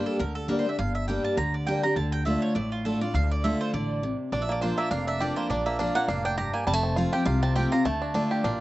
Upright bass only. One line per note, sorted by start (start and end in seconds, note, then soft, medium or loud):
0.20 0.58 D2 medium
0.79 1.17 G1 loud
1.37 1.76 D2 medium
1.96 2.35 D2 loud
2.55 2.94 A1 medium
3.14 3.53 D2 loud
3.73 4.12 A1 medium
4.32 4.71 A#1 medium
4.91 5.29 F1 medium
5.50 5.88 A#1 loud
6.08 6.47 F1 medium
6.67 7.06 F1 loud
7.26 7.65 C2 loud
7.85 8.24 D2 loud
8.44 8.60 A1 medium